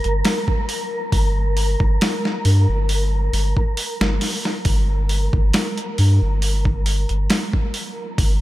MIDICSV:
0, 0, Header, 1, 4, 480
1, 0, Start_track
1, 0, Key_signature, -2, "minor"
1, 0, Tempo, 882353
1, 614, Time_signature, 4, 2, 24, 8
1, 4576, End_track
2, 0, Start_track
2, 0, Title_t, "Synth texture"
2, 0, Program_c, 0, 99
2, 0, Note_on_c, 0, 70, 84
2, 4576, Note_off_c, 0, 70, 0
2, 4576, End_track
3, 0, Start_track
3, 0, Title_t, "Sub bass"
3, 0, Program_c, 1, 38
3, 28, Note_on_c, 1, 31, 75
3, 123, Note_off_c, 1, 31, 0
3, 613, Note_on_c, 1, 31, 102
3, 957, Note_off_c, 1, 31, 0
3, 982, Note_on_c, 1, 31, 92
3, 1080, Note_off_c, 1, 31, 0
3, 1334, Note_on_c, 1, 43, 85
3, 1447, Note_off_c, 1, 43, 0
3, 1463, Note_on_c, 1, 31, 85
3, 1793, Note_off_c, 1, 31, 0
3, 1813, Note_on_c, 1, 31, 97
3, 1926, Note_off_c, 1, 31, 0
3, 2181, Note_on_c, 1, 31, 83
3, 2280, Note_off_c, 1, 31, 0
3, 2532, Note_on_c, 1, 31, 108
3, 2877, Note_off_c, 1, 31, 0
3, 2901, Note_on_c, 1, 31, 99
3, 3000, Note_off_c, 1, 31, 0
3, 3257, Note_on_c, 1, 43, 89
3, 3368, Note_off_c, 1, 43, 0
3, 3384, Note_on_c, 1, 31, 82
3, 3838, Note_off_c, 1, 31, 0
3, 3863, Note_on_c, 1, 31, 76
3, 3961, Note_off_c, 1, 31, 0
3, 4452, Note_on_c, 1, 31, 101
3, 4576, Note_off_c, 1, 31, 0
3, 4576, End_track
4, 0, Start_track
4, 0, Title_t, "Drums"
4, 23, Note_on_c, 9, 42, 40
4, 77, Note_off_c, 9, 42, 0
4, 134, Note_on_c, 9, 46, 84
4, 138, Note_on_c, 9, 38, 104
4, 188, Note_off_c, 9, 46, 0
4, 192, Note_off_c, 9, 38, 0
4, 260, Note_on_c, 9, 36, 85
4, 315, Note_off_c, 9, 36, 0
4, 374, Note_on_c, 9, 46, 66
4, 428, Note_off_c, 9, 46, 0
4, 611, Note_on_c, 9, 36, 101
4, 612, Note_on_c, 9, 46, 79
4, 666, Note_off_c, 9, 36, 0
4, 666, Note_off_c, 9, 46, 0
4, 852, Note_on_c, 9, 46, 65
4, 907, Note_off_c, 9, 46, 0
4, 980, Note_on_c, 9, 36, 94
4, 1034, Note_off_c, 9, 36, 0
4, 1095, Note_on_c, 9, 46, 80
4, 1099, Note_on_c, 9, 38, 112
4, 1149, Note_off_c, 9, 46, 0
4, 1153, Note_off_c, 9, 38, 0
4, 1225, Note_on_c, 9, 38, 46
4, 1280, Note_off_c, 9, 38, 0
4, 1333, Note_on_c, 9, 46, 62
4, 1387, Note_off_c, 9, 46, 0
4, 1573, Note_on_c, 9, 46, 79
4, 1627, Note_off_c, 9, 46, 0
4, 1814, Note_on_c, 9, 46, 61
4, 1868, Note_off_c, 9, 46, 0
4, 1940, Note_on_c, 9, 36, 86
4, 1994, Note_off_c, 9, 36, 0
4, 2052, Note_on_c, 9, 46, 83
4, 2106, Note_off_c, 9, 46, 0
4, 2182, Note_on_c, 9, 38, 105
4, 2237, Note_off_c, 9, 38, 0
4, 2291, Note_on_c, 9, 46, 78
4, 2294, Note_on_c, 9, 38, 34
4, 2345, Note_off_c, 9, 46, 0
4, 2349, Note_off_c, 9, 38, 0
4, 2423, Note_on_c, 9, 38, 49
4, 2477, Note_off_c, 9, 38, 0
4, 2529, Note_on_c, 9, 46, 82
4, 2531, Note_on_c, 9, 36, 104
4, 2584, Note_off_c, 9, 46, 0
4, 2585, Note_off_c, 9, 36, 0
4, 2771, Note_on_c, 9, 46, 69
4, 2825, Note_off_c, 9, 46, 0
4, 2900, Note_on_c, 9, 36, 97
4, 2955, Note_off_c, 9, 36, 0
4, 3011, Note_on_c, 9, 46, 82
4, 3015, Note_on_c, 9, 38, 111
4, 3065, Note_off_c, 9, 46, 0
4, 3069, Note_off_c, 9, 38, 0
4, 3142, Note_on_c, 9, 42, 41
4, 3196, Note_off_c, 9, 42, 0
4, 3254, Note_on_c, 9, 46, 62
4, 3308, Note_off_c, 9, 46, 0
4, 3493, Note_on_c, 9, 46, 77
4, 3547, Note_off_c, 9, 46, 0
4, 3620, Note_on_c, 9, 36, 89
4, 3674, Note_off_c, 9, 36, 0
4, 3731, Note_on_c, 9, 46, 63
4, 3786, Note_off_c, 9, 46, 0
4, 3858, Note_on_c, 9, 42, 38
4, 3913, Note_off_c, 9, 42, 0
4, 3970, Note_on_c, 9, 46, 81
4, 3973, Note_on_c, 9, 38, 108
4, 4024, Note_off_c, 9, 46, 0
4, 4028, Note_off_c, 9, 38, 0
4, 4099, Note_on_c, 9, 36, 82
4, 4153, Note_off_c, 9, 36, 0
4, 4210, Note_on_c, 9, 46, 66
4, 4264, Note_off_c, 9, 46, 0
4, 4451, Note_on_c, 9, 36, 105
4, 4452, Note_on_c, 9, 46, 83
4, 4505, Note_off_c, 9, 36, 0
4, 4506, Note_off_c, 9, 46, 0
4, 4576, End_track
0, 0, End_of_file